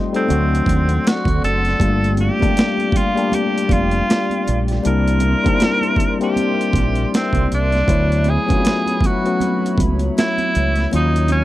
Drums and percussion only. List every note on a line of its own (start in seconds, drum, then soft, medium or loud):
0.14 closed hi-hat medium
0.29 closed hi-hat medium
0.29 high conga medium
0.29 low conga medium
0.55 closed hi-hat medium
0.66 kick medium
0.66 closed hi-hat medium
0.66 high conga medium
0.89 closed hi-hat medium
1.04 snare loud
1.04 closed hi-hat medium
1.04 muted conga soft
1.25 kick medium
1.25 closed hi-hat soft
1.25 high conga medium
1.44 closed hi-hat medium
1.65 snare soft
1.65 closed hi-hat soft
1.80 kick loud
1.80 closed hi-hat medium
2.04 closed hi-hat medium
2.17 closed hi-hat medium
2.17 high conga medium
2.39 kick loud
2.39 closed hi-hat soft
2.39 high conga medium
2.57 snare loud
2.57 closed hi-hat medium
2.77 closed hi-hat soft
2.77 high conga medium
2.92 kick medium
2.92 closed hi-hat medium
2.92 low conga medium
3.17 closed hi-hat soft
3.32 closed hi-hat medium
3.32 muted conga soft
3.32 high conga medium
3.32 low conga medium
3.58 closed hi-hat medium
3.69 kick medium
3.69 closed hi-hat medium
3.69 muted conga soft
3.69 high conga medium
3.91 closed hi-hat medium
4.10 snare loud
4.10 closed hi-hat medium
4.30 closed hi-hat soft
4.30 high conga medium
4.47 closed hi-hat medium
4.47 muted conga soft
4.68 snare soft
4.68 closed hi-hat medium
4.84 closed hi-hat medium
4.84 muted conga soft
5.08 closed hi-hat medium
5.20 closed hi-hat medium
5.20 muted conga soft
5.20 high conga medium
5.44 kick medium
5.44 closed hi-hat soft
5.44 high conga medium
5.60 snare loud
5.60 closed hi-hat medium
5.60 muted conga soft
5.81 closed hi-hat soft
5.81 high conga medium
5.96 kick medium
5.96 closed hi-hat medium
5.96 muted conga soft
5.96 low conga medium
6.21 closed hi-hat soft
6.36 closed hi-hat medium
6.36 muted conga soft
6.36 high conga medium
6.36 low conga medium
6.61 closed hi-hat medium
6.73 kick loud
6.73 closed hi-hat medium
6.73 high conga medium
6.95 closed hi-hat medium
7.14 snare loud
7.14 closed hi-hat medium
7.33 kick medium
7.33 closed hi-hat soft
7.33 high conga medium
7.52 closed hi-hat medium
7.52 muted conga soft
7.72 snare soft
7.72 closed hi-hat soft
7.88 kick loud
7.88 closed hi-hat medium
8.12 closed hi-hat medium
8.24 closed hi-hat medium
8.24 muted conga soft
8.24 high conga medium
8.49 kick medium
8.49 closed hi-hat soft
8.49 high conga medium
8.64 snare loud
8.64 closed hi-hat medium
8.64 muted conga soft
8.86 closed hi-hat soft
8.86 high conga soft
9.01 kick loud
9.01 closed hi-hat medium
9.01 muted conga soft
9.01 low conga medium
9.26 closed hi-hat soft
9.40 closed hi-hat medium
9.40 muted conga soft
9.40 high conga medium
9.40 low conga medium
9.66 closed hi-hat medium
9.78 kick medium
9.78 closed hi-hat medium
9.78 high conga medium
9.99 closed hi-hat medium
10.17 snare loud
10.17 closed hi-hat medium
10.17 muted conga soft
10.38 closed hi-hat soft
10.38 high conga medium
10.55 closed hi-hat medium
10.55 muted conga soft
10.76 snare soft
10.76 closed hi-hat soft
10.91 closed hi-hat medium
10.91 muted conga soft
11.16 closed hi-hat medium
11.28 closed hi-hat medium
11.28 muted conga soft
11.28 high conga medium